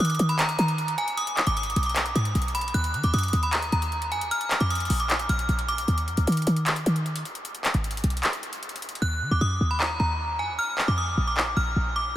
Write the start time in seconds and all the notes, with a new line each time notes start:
0.00 D#3 D#6
0.05 closed hi-hat
0.10 closed hi-hat
0.15 closed hi-hat
0.19 D#3, closed hi-hat
0.29 B5, closed hi-hat
0.39 A#5, clap, closed hi-hat
0.49 closed hi-hat
0.59 D#3 A#5, closed hi-hat
0.68 closed hi-hat
0.78 closed hi-hat
0.88 closed hi-hat
0.98 G#5, closed hi-hat
1.08 closed hi-hat
1.17 D#6, closed hi-hat
1.27 closed hi-hat
1.37 clap, closed hi-hat
1.47 G#1 D6, closed hi-hat
1.57 D#6, closed hi-hat
1.63 closed hi-hat
1.70 closed hi-hat
1.76 B1, closed hi-hat, open hi-hat
1.83 D6, closed hi-hat
1.89 closed hi-hat
1.96 clap, closed hi-hat
2.06 closed hi-hat
2.15 G#2 D#6, closed hi-hat
2.25 closed hi-hat
2.35 B1, closed hi-hat
2.42 closed hi-hat
2.48 closed hi-hat
2.55 B5, closed hi-hat
2.61 closed hi-hat
2.68 closed hi-hat
2.74 D#2 F#6, closed hi-hat
2.84 closed hi-hat
2.94 D#3, closed hi-hat
3.04 D#2 D6, closed hi-hat
3.14 F#2 D#6, closed hi-hat
3.19 closed hi-hat
3.23 closed hi-hat
3.28 closed hi-hat
3.33 D#2, closed hi-hat
3.43 B5, closed hi-hat
3.53 A#5, clap, closed hi-hat
3.62 closed hi-hat
3.72 D#2 A#5, closed hi-hat
3.82 closed hi-hat
3.92 closed hi-hat
4.02 closed hi-hat
4.12 F#2 G#5, closed hi-hat
4.21 D#2, closed hi-hat
4.31 F6, closed hi-hat
4.41 closed hi-hat
4.51 clap, closed hi-hat
4.60 F2 D6, closed hi-hat
4.70 D#6, closed hi-hat
4.75 closed hi-hat
4.80 closed hi-hat
4.85 closed hi-hat
4.90 A#1, open hi-hat
5.00 D6, closed hi-hat
5.10 clap, closed hi-hat
5.19 closed hi-hat
5.29 A#1 F6, closed hi-hat
5.39 closed hi-hat
5.49 A#1, closed hi-hat
5.59 closed hi-hat
5.68 D6, closed hi-hat
5.78 B1, closed hi-hat
5.88 D#2, closed hi-hat
5.98 closed hi-hat
6.08 F2, closed hi-hat
6.17 D2, closed hi-hat
6.27 D#3, closed hi-hat
6.32 closed hi-hat
6.37 closed hi-hat
6.42 closed hi-hat
6.47 D#3, closed hi-hat
6.56 closed hi-hat
6.66 clap, closed hi-hat
6.76 closed hi-hat
6.86 D#3, closed hi-hat
6.96 closed hi-hat
7.06 closed hi-hat
7.16 closed hi-hat
7.25 closed hi-hat
7.35 closed hi-hat
7.45 closed hi-hat
7.55 closed hi-hat
7.65 clap, closed hi-hat
7.74 G#1, closed hi-hat
7.84 closed hi-hat
7.91 closed hi-hat
7.97 closed hi-hat
8.04 B1, closed hi-hat, open hi-hat
8.10 closed hi-hat
8.17 closed hi-hat
8.23 clap, closed hi-hat
8.33 closed hi-hat
8.43 closed hi-hat
8.53 closed hi-hat
8.63 closed hi-hat
8.69 closed hi-hat
8.76 closed hi-hat
8.82 closed hi-hat
8.89 closed hi-hat
8.95 closed hi-hat
9.02 D#2 F#6
9.22 D#3
9.31 D#2 D6
9.41 F#2 D#6
9.61 D#2
9.71 B5
9.80 A#5, clap
10.00 D#2 A#5
10.39 F#2 G#5
10.49 D#2
10.59 F6
10.78 clap
10.88 F2 D6
10.98 D#6
11.18 A#1
11.27 D6
11.37 clap
11.57 A#1 F6
11.76 A#1
11.96 D6
12.06 B1